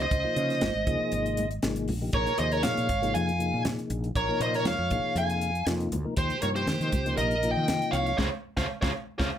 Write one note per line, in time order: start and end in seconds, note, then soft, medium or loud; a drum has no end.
0.00 1.48 C5 medium
0.00 1.48 D#5 medium
0.00 closed hi-hat soft
0.11 0.24 C#2 medium
0.11 kick medium
0.11 closed hi-hat medium
0.11 muted conga soft
0.24 0.74 C3 medium
0.24 0.74 F3 medium
0.24 0.74 A#3 medium
0.24 0.74 D#4 medium
0.24 0.74 F4 medium
0.36 0.60 C#3 medium
0.36 closed hi-hat medium
0.36 muted conga soft
0.50 snare soft
0.50 closed hi-hat soft
0.61 0.75 G#1 medium
0.61 snare loud
0.61 closed hi-hat medium
0.61 high conga medium
0.75 0.86 G#1 medium
0.87 1.00 C#2 medium
0.87 1.47 C3 medium
0.87 1.47 F3 medium
0.87 1.47 A#3 medium
0.87 1.47 D#4 medium
0.87 1.47 G#4 medium
0.87 kick medium
0.87 closed hi-hat medium
0.87 muted conga soft
1.01 muted fretless electric bass stroke soft
1.12 1.60 G#1 medium
1.12 closed hi-hat medium
1.12 muted conga soft
1.26 closed hi-hat soft
1.37 closed hi-hat medium
1.37 high conga medium
1.51 closed hi-hat soft
1.62 1.86 G#1 medium
1.62 1.93 C3 medium
1.62 1.93 F3 medium
1.62 1.93 A#3 medium
1.62 1.93 D#4 medium
1.62 1.93 G#4 loud
1.62 snare loud
1.62 closed hi-hat medium
1.76 closed hi-hat soft
1.88 2.11 A#1 medium
1.88 open hi-hat medium
1.88 high conga medium
2.01 2.11 C3 medium
2.01 2.11 F3 medium
2.01 2.11 A#3 medium
2.01 2.11 D#4 medium
2.01 2.11 G4 medium
2.12 2.26 A#1 medium
2.12 2.33 C3 medium
2.12 2.33 F3 medium
2.12 2.33 A#3 medium
2.12 2.33 D#4 medium
2.12 2.33 G#4 medium
2.12 2.38 A#4 medium
2.12 2.39 C#5 medium
2.12 kick loud
2.12 closed hi-hat medium
2.12 muted conga soft
2.27 closed hi-hat soft
2.37 2.62 D#2 medium
2.37 2.88 C3 medium
2.37 2.88 F3 medium
2.37 2.88 A#3 medium
2.37 2.88 D#4 medium
2.37 2.88 G#4 medium
2.37 2.53 C5 medium
2.37 2.52 D#5 medium
2.37 closed hi-hat medium
2.37 muted conga soft
2.52 2.63 A#4 medium
2.52 2.64 C#5 medium
2.52 closed hi-hat soft
2.63 2.76 A#2 medium
2.63 3.11 C#5 medium
2.63 3.15 F5 medium
2.63 snare loud
2.63 closed hi-hat medium
2.63 high conga medium
2.77 2.89 A#2 medium
2.77 closed hi-hat soft
2.89 3.13 G#1 medium
2.89 kick medium
2.89 closed hi-hat medium
2.89 muted conga soft
3.02 3.31 C3 medium
3.02 3.32 F3 medium
3.02 3.32 A#3 medium
3.02 3.32 D#4 medium
3.02 3.32 G#4 medium
3.02 closed hi-hat soft
3.14 3.51 F2 medium
3.14 3.61 F5 medium
3.14 3.62 G#5 medium
3.14 closed hi-hat medium
3.14 muted conga soft
3.29 closed hi-hat soft
3.39 4.09 C3 medium
3.39 4.09 F3 medium
3.39 4.09 A#3 medium
3.39 4.09 D#4 medium
3.39 4.09 G#4 medium
3.39 closed hi-hat medium
3.54 3.77 A#2 medium
3.65 snare loud
3.65 closed hi-hat medium
3.65 high conga medium
3.79 closed hi-hat soft
3.90 4.14 A#1 medium
3.90 closed hi-hat medium
4.04 closed hi-hat soft
4.15 4.28 A#1 medium
4.15 4.39 A#4 medium
4.15 4.42 C#5 medium
4.15 kick medium
4.15 closed hi-hat medium
4.15 muted conga soft
4.28 4.78 C3 medium
4.28 4.78 F3 medium
4.28 4.78 A#3 medium
4.28 4.78 D#4 medium
4.28 4.78 A#4 medium
4.40 4.64 A#2 medium
4.40 4.55 C5 medium
4.40 4.56 D#5 medium
4.40 closed hi-hat medium
4.40 muted conga soft
4.54 4.66 A#4 medium
4.54 4.67 C#5 medium
4.54 snare soft
4.54 closed hi-hat soft
4.65 4.78 F2 medium
4.65 5.13 C#5 medium
4.65 5.18 F5 medium
4.65 snare loud
4.65 closed hi-hat medium
4.65 high conga medium
4.79 4.90 F2 medium
4.91 5.04 A#1 medium
4.91 5.51 C3 medium
4.91 5.51 F3 medium
4.91 5.51 A#3 medium
4.91 5.51 D#4 medium
4.91 5.51 G#4 medium
4.91 kick medium
4.91 closed hi-hat medium
4.91 muted conga soft
5.04 muted fretless electric bass stroke soft
5.15 5.63 F2 medium
5.15 5.64 F5 medium
5.15 5.64 G#5 medium
5.15 closed hi-hat medium
5.15 muted conga soft
5.30 closed hi-hat soft
5.41 closed hi-hat medium
5.55 closed hi-hat soft
5.66 5.90 F2 medium
5.66 5.96 C3 medium
5.66 5.97 F3 medium
5.66 5.97 A#3 medium
5.66 5.97 D#4 medium
5.66 5.97 F4 medium
5.66 snare loud
5.66 closed hi-hat medium
5.80 closed hi-hat soft
5.92 6.05 D2 medium
5.92 closed hi-hat medium
5.92 high conga medium
6.04 6.14 C3 medium
6.04 6.14 F3 medium
6.04 6.14 A#3 medium
6.04 6.14 D#4 medium
6.04 6.14 A#4 medium
6.17 6.30 D#2 medium
6.17 6.37 C3 medium
6.17 6.37 F3 medium
6.17 6.37 A#3 medium
6.17 6.37 D#4 medium
6.17 6.37 G4 medium
6.17 6.41 G4 medium
6.17 6.42 C5 medium
6.17 kick loud
6.17 closed hi-hat medium
6.17 muted conga soft
6.30 closed hi-hat soft
6.42 6.66 G2 medium
6.42 6.91 C3 medium
6.42 6.92 F3 medium
6.42 6.92 A#3 medium
6.42 6.92 D#4 medium
6.42 6.92 G4 medium
6.42 6.47 A#4 medium
6.42 6.48 C#5 medium
6.42 closed hi-hat medium
6.42 muted conga soft
6.55 7.14 G4 medium
6.55 7.14 C5 medium
6.55 closed hi-hat soft
6.67 6.80 D#3 medium
6.67 snare loud
6.67 closed hi-hat medium
6.67 high conga medium
6.80 6.92 D#3 medium
6.80 closed hi-hat soft
6.92 7.16 C#2 medium
6.92 kick medium
6.92 closed hi-hat medium
6.92 muted conga soft
6.92 high conga medium
7.05 7.35 C3 medium
7.05 7.35 F3 medium
7.05 7.35 A#3 medium
7.05 7.35 D#4 medium
7.05 7.36 G4 medium
7.05 closed hi-hat soft
7.17 7.54 A#1 medium
7.17 7.48 A#4 medium
7.17 7.49 D#5 loud
7.17 closed hi-hat medium
7.17 muted conga soft
7.31 closed hi-hat soft
7.43 8.12 C3 medium
7.43 8.12 F3 medium
7.43 8.13 A#3 medium
7.43 8.13 D#4 medium
7.43 8.13 F4 medium
7.43 closed hi-hat medium
7.50 7.90 D#5 medium
7.50 7.95 G5 loud
7.57 7.80 D#3 medium
7.68 snare loud
7.68 closed hi-hat medium
7.68 high conga medium
7.82 closed hi-hat soft
7.92 8.17 C2 medium
7.92 8.16 C#5 medium
7.92 8.16 F5 medium
7.92 closed hi-hat medium
8.06 closed hi-hat soft
8.17 8.29 C#2 medium
8.17 8.27 G#3 medium
8.17 8.27 C4 medium
8.17 8.27 C#4 medium
8.17 8.28 G#4 medium
8.17 8.27 C5 medium
8.17 8.28 C5 medium
8.17 8.27 C#5 medium
8.17 8.28 C#5 medium
8.17 8.27 F5 medium
8.17 kick medium
8.17 snare medium
8.17 high conga loud
8.57 8.66 C#2 medium
8.57 8.65 G#3 medium
8.57 8.65 C4 medium
8.57 8.65 C#4 medium
8.57 8.65 G#4 medium
8.57 8.65 C5 medium
8.57 8.65 C#5 medium
8.57 8.65 F5 medium
8.57 kick medium
8.57 snare medium
8.57 high conga medium
8.82 8.91 C#2 medium
8.82 8.90 G#3 medium
8.82 8.90 C4 medium
8.82 8.90 C#4 medium
8.82 8.90 G#4 medium
8.82 8.90 C5 medium
8.82 8.90 C#5 loud
8.82 8.90 F5 medium
8.82 kick loud
8.82 snare medium
8.82 high conga medium
9.19 9.29 C#2 medium
9.19 9.28 G#3 medium
9.19 9.28 C4 medium
9.19 9.28 C#4 medium
9.19 9.29 G#4 medium
9.19 9.28 C5 loud
9.19 9.29 C5 medium
9.19 9.28 C#5 medium
9.19 9.29 C#5 medium
9.19 9.28 F5 medium
9.19 kick medium
9.19 snare medium
9.19 high conga medium